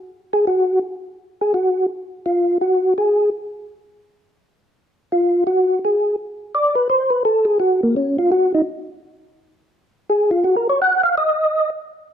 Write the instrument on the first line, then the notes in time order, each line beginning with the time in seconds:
tonewheel organ
0.33 G#4
0.47 F#4
1.41 G#4
1.54 F#4
2.26 F4
2.61 F#4
2.98 G#4
5.12 F4
5.47 F#4
5.85 G#4
6.55 D5
6.75 B4
6.90 C5
7.10 B4
7.25 A4
7.45 G#4
7.60 F#4
7.83 A#3
7.96 C#4
8.19 F4
8.32 F#4
8.54 D#4
10.10 G#4
10.31 F4
10.44 F#4
10.56 A#4
10.69 C#5
10.82 F#5
11.04 F5
11.18 D#5